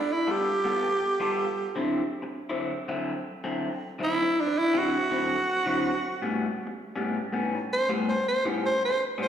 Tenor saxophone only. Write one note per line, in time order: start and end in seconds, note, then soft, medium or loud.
0.00 0.14 D4 medium
0.13 0.33 E4 medium
0.31 1.93 G4 medium
4.04 4.42 E4 loud
4.41 4.60 D4 medium
4.58 4.80 E4 medium
4.78 6.39 F#4 medium
7.73 7.90 C5 loud
8.10 8.27 C5 medium
8.28 8.45 C5 medium
8.66 8.83 C5 medium
8.85 9.02 C5 loud
9.23 9.28 C5 medium